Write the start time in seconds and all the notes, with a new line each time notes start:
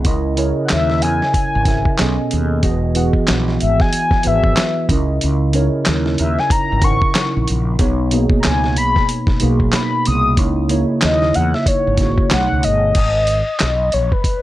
0.05 C#2 C#3 C#4 E4 A#4 D#5, kick, closed hi-hat
0.36 C#3 C#4 E4 A#4 C#5, closed hi-hat
0.65 F#5
0.69 D#2 E5, snare, clap, closed hi-hat
0.90 snare
1.02 E2 G#5, closed hi-hat
1.22 snare
1.33 G#5, muted fretless electric bass stroke, kick, closed hi-hat
1.55 G#1
1.65 C#3 C#4 E4 A#4 E5, kick, snare, closed hi-hat
1.85 kick
1.98 B1 B2 B3 C#4 G#4 A4 D#5, snare, clap, closed hi-hat
2.31 D#2, closed hi-hat
2.62 E1 E3 B3 F#4 G#4 D#5, kick, closed hi-hat
2.95 E3 B3 F#4 G#4 F#5, closed hi-hat
3.13 kick
3.27 A#1, snare, clap, closed hi-hat
3.48 snare
3.60 G#1 E5, closed hi-hat
3.80 G#5, kick, snare
3.93 G#5, closed hi-hat
4.11 muted fretless electric bass stroke, kick, snare
4.23 G#1 E3 B3 F#4 G#4 B4 E5, closed hi-hat
4.44 kick
4.57 snare, clap, closed hi-hat
4.89 C#2 C#3 C#4 E4 A#4 D#5, kick, closed hi-hat
5.21 C#2, closed hi-hat
5.53 C#3 C#4 D#4 A#4 C#5, closed hi-hat
5.61 E4
5.85 D#2, snare, clap, closed hi-hat
6.06 snare
6.18 D#2 E5, closed hi-hat
6.39 G#5, snare
6.50 A#5, muted fretless electric bass stroke, kick, closed hi-hat
6.72 G#1
6.82 C#3 C#4 D#4 A#4 F#5 C#6, kick, closed hi-hat
6.90 E4
7.02 kick
7.15 snare, clap, closed hi-hat
7.36 A#1
7.48 A#1, closed hi-hat
7.79 B1 B2 B3 D#4 G#4 C#5, kick, closed hi-hat
8.11 B2 A#3 B3 D#4 G#4, closed hi-hat
8.30 kick
8.40 A#5, closed hi-hat
8.44 C#2 G#5, snare, clap
8.64 snare
8.77 B1 B5, closed hi-hat
8.96 kick, snare
9.09 closed hi-hat
9.27 muted fretless electric bass stroke, kick, snare
9.40 B1 B2 A#3 B3 D#4 G#4, closed hi-hat
9.60 kick
9.73 B5, snare, clap, closed hi-hat
10.05 C2 D#6, closed hi-hat
10.37 C#2 C#3 A#3 D#4 E4 C#5, kick, closed hi-hat
10.69 C#3 A#3 D#4 E4 C#5, closed hi-hat
11.01 D#2 D#5, snare, clap, closed hi-hat
11.22 snare
11.34 E2 F#5, closed hi-hat
11.54 E5, snare
11.66 C#5, muted fretless electric bass stroke, kick, closed hi-hat
11.87 G#1
11.97 C#3 A#3 D#4 E4 F#4, kick, snare, closed hi-hat
12.18 kick
12.31 B1 B2 A3 D#4 G#4 C#5 F#5, snare, clap, closed hi-hat
12.52 C#2
12.63 G1 D#5, closed hi-hat
12.95 G#1, kick, closed hi-hat, crash
13.27 closed hi-hat
13.59 B1, snare, clap, closed hi-hat
13.92 A#1 C#5, closed hi-hat
14.12 B4, kick
14.24 kick, closed hi-hat